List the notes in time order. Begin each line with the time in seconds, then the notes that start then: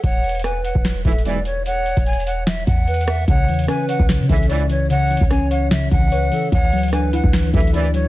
0.04 E1 C#5 F#5, kick, closed hi-hat
0.24 closed hi-hat
0.29 closed hi-hat
0.35 closed hi-hat
0.39 closed hi-hat
0.44 B4 G#5, cross-stick, closed hi-hat
0.64 F#5, closed hi-hat
0.75 E1, kick
0.85 snare, closed hi-hat
0.91 closed hi-hat
0.98 closed hi-hat
1.05 E1 B1 G#2 E3 A4 E5, kick, closed hi-hat
1.12 closed hi-hat
1.18 closed hi-hat
1.25 B1 G#2 E3 D5, closed hi-hat
1.45 C#5, closed hi-hat
1.66 C#5 F#5, closed hi-hat
1.86 closed hi-hat
1.97 E1, kick, closed hi-hat
2.06 G#5, closed hi-hat
2.13 closed hi-hat
2.20 closed hi-hat
2.27 F#5, closed hi-hat
2.47 E5, snare, closed hi-hat
2.54 closed hi-hat
2.60 closed hi-hat
2.66 E2 F#5, kick, closed hi-hat
2.87 B4, closed hi-hat
2.94 closed hi-hat
3.01 closed hi-hat
3.07 E5, cross-stick, open hi-hat
3.28 C#2 C#3 C#5 F#5, kick, closed hi-hat
3.48 E2 E3, closed hi-hat
3.54 closed hi-hat
3.59 closed hi-hat
3.64 closed hi-hat
3.68 C#4 B4 G#5, cross-stick, closed hi-hat
3.88 C#5 F#5, closed hi-hat
3.99 C#2, kick
4.09 C#3, snare, closed hi-hat
4.16 closed hi-hat
4.20 C#3, closed hi-hat
4.29 C#2 G#2 E3 A4 E5, kick, closed hi-hat
4.36 closed hi-hat
4.43 closed hi-hat
4.49 C#2 G#2 E3 C#5 D5, closed hi-hat
4.69 E3 C#5, closed hi-hat
4.90 C#3 C#5 F#5, closed hi-hat
5.10 E3, closed hi-hat
5.17 closed hi-hat
5.21 C#2, kick, closed hi-hat
5.30 C#4 G#5, cross-stick, closed hi-hat
5.51 C#5 F#5, closed hi-hat
5.71 C#3 E5, snare, closed hi-hat
5.91 C#2 E3 F#5, kick, closed hi-hat
6.12 B4 C#5, closed hi-hat
6.32 E3 A4, open hi-hat
6.52 D2 E3 C#5 F#5, kick, closed hi-hat
6.73 F#3, closed hi-hat
6.78 closed hi-hat
6.83 closed hi-hat
6.88 closed hi-hat
6.92 D4 B4 G#5, cross-stick, closed hi-hat
7.13 E4 F#5, closed hi-hat
7.24 D2, kick
7.33 E3, snare, closed hi-hat
7.40 closed hi-hat
7.47 closed hi-hat
7.53 A1 D2 F#2 E3 F#3 A4 E5, kick, closed hi-hat
7.60 closed hi-hat
7.67 closed hi-hat
7.73 A1 F#2 E3 E4 D5, closed hi-hat
7.94 F#3 C#5, closed hi-hat